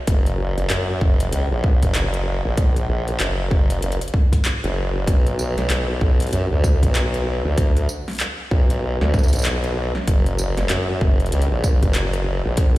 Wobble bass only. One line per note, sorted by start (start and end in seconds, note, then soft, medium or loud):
0.07 0.55 F#1 medium
0.57 0.68 F#1 loud
0.70 0.99 F#2 loud
1.01 1.31 F#1 medium
1.32 1.48 C#2 medium
1.51 1.80 A#1 loud
1.83 2.42 F#1 medium
2.45 2.87 A#1 medium
2.89 3.18 A#1 medium
3.20 3.81 F#1 medium
3.83 3.98 F#1 medium
4.64 5.06 F#1 loud
5.07 5.55 B1 loud
5.58 5.68 B1 loud
5.70 5.99 B1 loud
6.01 6.31 B1 loud
6.32 6.48 F#2 loud
6.51 6.80 D2 loud
6.83 7.42 B1 medium
7.45 7.87 D2 medium
8.51 8.98 B1 loud
9.01 9.30 D2 medium
9.32 9.92 B1 medium
10.08 10.55 F#1 medium
10.58 10.68 F#1 loud
10.70 10.99 F#2 medium
11.01 11.30 F#1 loud
11.32 11.48 C#2 loud
11.51 11.79 A#1 loud
11.83 12.42 F#1 loud
12.45 12.78 A#1 loud